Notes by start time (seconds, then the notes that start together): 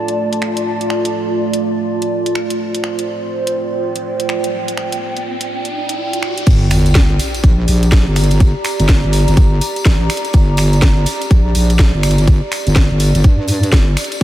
Already playing: A3 F4 D5 A5
0.08 closed hi-hat
0.33 closed hi-hat
0.42 finger snap
0.57 closed hi-hat
0.81 closed hi-hat
0.90 finger snap
1.05 closed hi-hat
1.54 closed hi-hat
2.02 closed hi-hat
2.26 closed hi-hat
2.35 finger snap
2.50 closed hi-hat
2.60 C5, riser
2.75 closed hi-hat
2.82 G5, finger snap
2.99 closed hi-hat
3.47 closed hi-hat
3.96 closed hi-hat
4.20 closed hi-hat
4.29 finger snap
4.44 closed hi-hat
4.68 closed hi-hat
4.77 finger snap
4.92 closed hi-hat
5.17 closed hi-hat
5.41 closed hi-hat
5.65 closed hi-hat
5.89 closed hi-hat
6.13 closed hi-hat
6.23 finger snap
6.38 closed hi-hat
6.46 G1 G4, kick, closed hi-hat, crash, tambourine, sub drop
6.58 D5
6.70 finger snap, open hi-hat, tambourine
6.86 closed hi-hat, tambourine
6.95 G1, kick, snare, closed hi-hat
7.03 A#5
7.19 open hi-hat, tambourine
7.34 closed hi-hat, tambourine
7.44 A#1, kick, closed hi-hat
7.68 A#1, open hi-hat, tambourine
7.83 closed hi-hat, tambourine
7.92 kick, snare, closed hi-hat, tambourine
8.07 G1
8.16 finger snap, open hi-hat, tambourine
8.24 closed hi-hat
8.30 closed hi-hat, tambourine
8.40 kick, closed hi-hat, tambourine
8.64 finger snap, open hi-hat, tambourine
8.79 G1, closed hi-hat, tambourine
8.89 kick, snare, closed hi-hat
9.04 G1
9.13 open hi-hat, tambourine
9.28 G1, closed hi-hat, tambourine
9.37 G1, kick, closed hi-hat, tambourine
9.61 open hi-hat, tambourine
9.76 closed hi-hat, tambourine
9.85 A1, kick, snare, closed hi-hat
10.10 finger snap, open hi-hat, tambourine
10.17 closed hi-hat
10.25 closed hi-hat, tambourine
10.33 G1, kick, closed hi-hat, tambourine
10.57 finger snap, open hi-hat, tambourine
10.73 closed hi-hat, tambourine
10.82 G1, kick, snare, closed hi-hat
11.06 open hi-hat, tambourine
11.22 closed hi-hat, tambourine
11.30 A#1, kick, closed hi-hat, tambourine
11.55 A#1, open hi-hat, tambourine
11.70 closed hi-hat, tambourine
11.79 kick, snare, closed hi-hat
11.94 G1
12.03 finger snap, open hi-hat, tambourine
12.11 closed hi-hat
12.18 closed hi-hat, tambourine
12.27 kick, closed hi-hat, tambourine
12.52 finger snap, open hi-hat, tambourine
12.67 G1, closed hi-hat, tambourine
12.76 kick, snare, closed hi-hat
12.91 G1
13.00 open hi-hat, tambourine
13.15 G1, closed hi-hat, tambourine
13.24 G2, kick, closed hi-hat, tambourine
13.48 open hi-hat, tambourine
13.63 closed hi-hat, tambourine
13.72 G1, kick, snare, closed hi-hat, tambourine
13.97 finger snap, open hi-hat, tambourine
14.04 closed hi-hat
14.12 closed hi-hat, tambourine